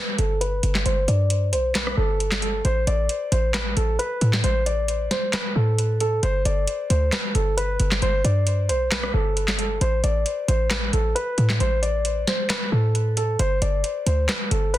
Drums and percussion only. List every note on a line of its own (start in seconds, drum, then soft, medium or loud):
0.18 closed hi-hat medium
0.41 closed hi-hat medium
0.63 closed hi-hat medium
0.75 snare medium
0.75 clap medium
0.86 closed hi-hat medium
1.08 closed hi-hat medium
1.30 closed hi-hat medium
1.53 closed hi-hat medium
1.75 snare loud
1.75 clap loud
1.75 closed hi-hat medium
1.87 cross-stick loud
2.20 closed hi-hat medium
2.32 snare loud
2.32 clap medium
2.42 closed hi-hat medium
2.65 closed hi-hat medium
2.87 closed hi-hat medium
3.09 closed hi-hat medium
3.32 closed hi-hat medium
3.54 snare loud
3.54 clap loud
3.54 closed hi-hat medium
3.77 closed hi-hat medium
3.99 closed hi-hat medium
4.21 closed hi-hat medium
4.33 snare medium
4.33 clap medium
4.44 closed hi-hat medium
4.66 closed hi-hat medium
4.88 closed hi-hat medium
5.11 snare medium
5.11 closed hi-hat medium
5.33 snare loud
5.33 clap loud
5.33 closed hi-hat medium
5.78 closed hi-hat medium
6.00 closed hi-hat medium
6.23 closed hi-hat medium
6.45 closed hi-hat medium
6.67 closed hi-hat medium
6.90 closed hi-hat medium
7.12 snare loud
7.12 clap loud
7.12 closed hi-hat medium
7.35 closed hi-hat medium
7.58 closed hi-hat medium
7.80 closed hi-hat medium
7.92 snare medium
7.92 clap medium
8.02 closed hi-hat medium
8.25 closed hi-hat medium
8.47 closed hi-hat medium
8.69 closed hi-hat medium
8.91 snare loud
8.91 clap loud
8.91 closed hi-hat medium
9.03 cross-stick medium
9.37 closed hi-hat medium
9.48 snare loud
9.48 clap medium
9.59 closed hi-hat medium
9.81 closed hi-hat medium
10.04 closed hi-hat medium
10.26 closed hi-hat medium
10.48 closed hi-hat medium
10.71 snare loud
10.71 clap loud
10.71 closed hi-hat medium
10.93 closed hi-hat medium
11.16 closed hi-hat medium
11.38 closed hi-hat medium
11.50 snare medium
11.50 clap medium
11.60 closed hi-hat medium
11.83 closed hi-hat medium
12.05 closed hi-hat medium
12.27 snare medium
12.27 closed hi-hat medium
12.50 snare loud
12.50 clap loud
12.50 closed hi-hat medium
12.95 closed hi-hat medium
13.17 closed hi-hat medium
13.39 closed hi-hat medium
13.62 closed hi-hat medium
13.84 closed hi-hat medium
14.07 closed hi-hat medium
14.29 snare loud
14.29 clap loud
14.29 closed hi-hat medium
14.51 closed hi-hat medium
14.74 closed hi-hat medium